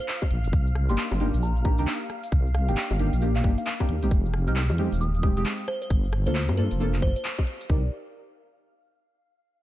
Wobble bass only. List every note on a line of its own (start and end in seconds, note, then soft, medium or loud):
0.31 0.46 A#1 medium
0.45 0.52 F1 loud
0.53 0.91 C2 loud
0.89 0.97 G1 loud
1.12 1.31 G1 medium
1.34 1.80 A#1 loud
1.79 1.86 C2 loud
2.32 2.70 C2 loud
2.68 2.76 G1 loud
2.91 3.10 G1 medium
3.13 3.43 A#1 loud
3.44 3.57 G1 loud
3.89 4.04 D#2 medium
4.03 4.10 A#1 loud
4.11 4.49 F1 loud
4.48 4.71 C2 loud
4.70 4.89 F2 medium
4.92 5.39 D#1 loud
5.37 5.45 F1 loud
5.90 6.28 G1 loud
6.27 6.51 D2 loud
6.49 6.69 G2 medium
6.72 7.04 F1 loud
7.02 7.15 G1 medium
7.70 7.90 C2 loud